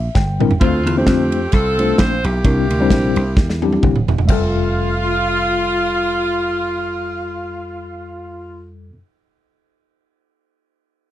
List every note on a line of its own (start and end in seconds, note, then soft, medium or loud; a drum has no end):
0.00 0.14 E5 medium
0.15 0.54 G1 loud
0.15 0.58 G5 medium
0.15 kick loud
0.15 snare medium
0.40 0.51 G3 medium
0.40 0.51 C4 medium
0.40 0.51 D4 medium
0.40 0.51 E4 medium
0.40 0.51 A#4 medium
0.40 mid tom loud
0.51 floor tom medium
0.61 0.83 D2 loud
0.61 1.29 D3 medium
0.61 0.80 A3 medium
0.61 1.49 A3 medium
0.61 0.81 C4 medium
0.61 0.96 C4 medium
0.61 0.81 D4 medium
0.61 0.94 F4 medium
0.61 0.81 F4 medium
0.61 0.81 C5 medium
0.61 kick loud
0.61 ride medium
0.86 1.04 E2 medium
0.86 ride medium
0.96 1.38 A3 medium
0.96 1.38 C4 medium
0.96 1.52 C4 medium
0.96 1.39 D4 medium
0.96 1.39 F4 medium
0.96 1.53 G4 loud
0.96 1.39 C5 medium
1.07 1.46 F2 loud
1.07 kick loud
1.07 snare loud
1.07 ride medium
1.32 ride medium
1.52 1.92 C2 loud
1.52 2.41 C4 medium
1.52 2.41 F4 medium
1.52 1.99 A4 loud
1.52 kick loud
1.52 snare soft
1.52 ride medium
1.79 2.13 A3 medium
1.79 2.13 C4 medium
1.79 2.13 D4 medium
1.79 2.13 F4 medium
1.79 2.13 C5 medium
1.79 ride medium
1.98 2.21 A#1 loud
1.98 2.24 C5 loud
1.98 kick medium
1.98 snare loud
1.98 ride medium
2.24 2.42 B1 loud
2.24 3.79 A#3 medium
2.24 3.79 E4 medium
2.24 3.83 G4 loud
2.24 ride medium
2.45 2.66 C2 loud
2.45 3.13 C3 medium
2.45 2.64 G3 medium
2.45 2.65 C4 medium
2.45 2.65 D4 medium
2.45 2.65 E4 medium
2.45 2.65 A#4 medium
2.45 kick loud
2.45 ride medium
2.70 2.91 D2 medium
2.70 ride medium
2.80 3.22 G3 loud
2.80 3.22 C4 medium
2.80 3.22 D4 medium
2.80 3.23 E4 medium
2.80 3.23 C5 loud
2.90 3.12 A#1 loud
2.90 kick medium
2.90 snare loud
2.90 ride medium
3.16 3.38 C2 medium
3.16 ride medium
3.37 3.76 E2 loud
3.37 kick loud
3.37 snare medium
3.49 snare medium
3.62 3.96 G3 medium
3.62 3.97 C4 medium
3.62 3.97 D4 medium
3.62 3.97 E4 medium
3.62 3.97 G4 medium
3.62 high tom medium
3.72 high tom medium
3.83 4.05 D#1 loud
3.83 kick medium
3.83 mid tom medium
3.96 mid tom medium
4.08 4.26 E1 medium
4.08 floor tom loud
4.18 floor tom loud
4.26 8.92 F1 medium
4.26 8.92 F2 medium
4.26 8.89 G3 medium
4.26 8.73 F4 loud
4.26 8.91 E5 medium
4.26 kick loud
4.26 crash medium
4.30 8.93 F4 medium
4.30 8.95 A4 medium